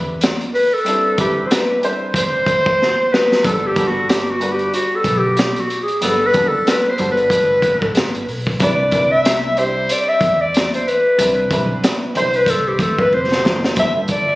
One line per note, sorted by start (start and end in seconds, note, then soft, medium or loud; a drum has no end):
0.00 0.35 E2 medium
0.00 0.31 G3 medium
0.00 0.31 C4 medium
0.00 0.32 D4 medium
0.00 0.32 E4 medium
0.00 0.32 B4 medium
0.21 snare loud
0.21 closed hi-hat medium
0.41 closed hi-hat soft
0.55 0.75 B4 loud
0.55 open hi-hat soft
0.74 1.19 A4 loud
0.84 1.13 G3 medium
0.84 1.13 C4 medium
0.84 1.14 D4 medium
0.84 1.14 E4 medium
0.84 1.14 A4 medium
0.84 closed hi-hat loud
1.17 1.72 G3 medium
1.17 1.73 C4 medium
1.17 1.73 D4 medium
1.17 1.73 E4 medium
1.17 1.48 G4 medium
1.17 1.74 B4 medium
1.17 kick medium
1.17 closed hi-hat medium
1.46 1.55 C5 medium
1.51 1.85 B4 medium
1.51 snare loud
1.51 closed hi-hat loud
1.82 2.89 G3 medium
1.82 2.89 C4 medium
1.82 2.89 D4 medium
1.82 2.90 E4 medium
1.82 2.90 C5 medium
1.82 closed hi-hat medium
2.14 3.15 C5 loud
2.14 kick loud
2.14 closed hi-hat loud
2.46 kick medium
2.46 closed hi-hat medium
2.66 kick medium
2.82 snare medium
3.13 3.47 B4 loud
3.13 snare loud
3.32 snare medium
3.43 4.70 G1 loud
3.43 3.71 G3 medium
3.43 3.71 B3 medium
3.43 3.72 D4 medium
3.43 3.72 F#4 medium
3.43 3.68 A4 medium
3.43 3.72 A4 medium
3.43 kick loud
3.43 closed hi-hat loud
3.67 3.89 G4 loud
3.75 4.30 G3 medium
3.75 4.31 B3 medium
3.75 4.31 D4 medium
3.75 4.32 F#4 medium
3.75 4.32 A4 medium
3.75 kick medium
3.75 closed hi-hat medium
3.87 4.11 F#4 loud
4.09 4.32 G4 medium
4.09 snare loud
4.09 closed hi-hat loud
4.31 4.54 F#4 medium
4.39 5.47 G3 medium
4.39 5.47 B3 medium
4.39 5.47 D4 medium
4.39 5.48 F#4 medium
4.39 5.48 B4 medium
4.39 closed hi-hat medium
4.53 4.74 G4 medium
4.59 closed hi-hat soft
4.74 4.97 F#4 medium
4.74 closed hi-hat loud
4.96 5.19 A4 medium
5.04 5.51 B1 medium
5.04 kick medium
5.04 closed hi-hat medium
5.18 5.62 G4 medium
5.37 snare loud
5.37 closed hi-hat medium
5.56 closed hi-hat medium
5.60 5.82 F#4 medium
5.70 closed hi-hat medium
5.82 6.05 G#4 medium
5.88 closed hi-hat medium
6.01 6.32 G1 medium
6.01 6.29 G3 medium
6.01 6.29 B3 medium
6.01 6.30 D4 medium
6.01 6.30 F#4 medium
6.01 6.28 A4 medium
6.01 6.30 B4 medium
6.01 closed hi-hat loud
6.27 6.49 B4 loud
6.33 6.51 F#1 medium
6.33 6.88 G3 medium
6.33 6.89 B3 medium
6.33 6.89 D4 medium
6.33 6.89 F#4 medium
6.33 6.90 A4 medium
6.33 kick medium
6.33 closed hi-hat medium
6.48 6.71 A4 loud
6.67 6.92 B4 medium
6.67 snare loud
6.67 closed hi-hat loud
6.90 7.11 C5 loud
6.98 7.62 G1 loud
6.98 8.05 G3 medium
6.98 8.05 B3 medium
6.98 8.06 D4 medium
6.98 8.06 F#4 medium
6.98 8.06 A4 medium
6.98 closed hi-hat medium
7.12 8.04 B4 loud
7.17 closed hi-hat soft
7.30 kick loud
7.30 closed hi-hat medium
7.62 7.96 A1 medium
7.62 kick medium
7.62 closed hi-hat medium
7.82 kick medium
7.95 8.29 G1 loud
7.95 snare loud
7.95 closed hi-hat medium
8.15 closed hi-hat medium
8.28 8.58 B1 loud
8.28 open hi-hat medium
8.47 kick loud
8.59 9.86 C2 loud
8.59 8.87 G3 medium
8.59 8.88 C4 medium
8.59 8.88 D4 medium
8.59 8.88 E4 medium
8.59 8.89 B4 medium
8.59 9.13 D5 loud
8.59 kick loud
8.59 closed hi-hat loud
8.91 9.47 G3 medium
8.91 9.47 C4 medium
8.91 9.48 D4 medium
8.91 9.48 E4 medium
8.91 9.48 B4 medium
8.91 kick medium
8.91 closed hi-hat medium
9.12 9.60 E5 loud
9.25 snare loud
9.25 closed hi-hat loud
9.56 10.63 G3 medium
9.56 10.63 C4 medium
9.56 10.64 D4 medium
9.56 10.64 E4 medium
9.56 10.64 G4 medium
9.56 9.93 C5 loud
9.56 closed hi-hat medium
9.89 10.10 D5 loud
9.89 closed hi-hat loud
10.09 10.43 E5 loud
10.21 10.67 E2 loud
10.21 kick medium
10.21 closed hi-hat medium
10.41 10.73 D5 loud
10.54 snare loud
10.54 closed hi-hat medium
10.74 10.89 C5 medium
10.74 closed hi-hat medium
10.88 11.52 B4 medium
10.88 closed hi-hat medium
11.18 11.48 C2 loud
11.18 11.45 G3 medium
11.18 11.46 C4 medium
11.18 11.46 D4 medium
11.18 11.47 E4 medium
11.18 11.47 B4 medium
11.18 closed hi-hat loud
11.50 11.68 B1 medium
11.50 12.05 G3 medium
11.50 12.05 C4 medium
11.50 12.06 D4 medium
11.50 12.06 E4 medium
11.50 12.06 B4 medium
11.50 kick medium
11.50 closed hi-hat medium
11.84 snare loud
11.84 closed hi-hat loud
12.14 12.74 C2 loud
12.14 13.21 G3 medium
12.14 13.22 C4 medium
12.14 13.22 D4 medium
12.14 13.22 E4 medium
12.14 13.23 C5 medium
12.14 closed hi-hat medium
12.19 12.38 C5 loud
12.34 12.52 B4 loud
12.34 closed hi-hat soft
12.46 12.70 A4 loud
12.46 kick loud
12.46 closed hi-hat loud
12.68 12.81 G4 medium
12.79 13.14 D2 loud
12.79 13.02 A4 medium
12.79 kick medium
12.79 closed hi-hat medium
12.99 13.16 B4 loud
12.99 kick loud
13.13 13.42 F1 medium
13.13 13.78 C5 loud
13.32 snare medium
13.45 13.74 F#1 loud
13.45 snare loud
13.64 snare medium
13.76 14.35 G1 medium
13.76 14.35 G3 medium
13.76 14.35 B3 medium
13.76 14.35 D4 medium
13.76 14.35 F#4 medium
13.76 14.35 A4 medium
13.76 13.93 E5 loud
13.76 kick loud
13.76 closed hi-hat loud
14.08 14.35 D5 loud
14.08 kick medium
14.08 closed hi-hat medium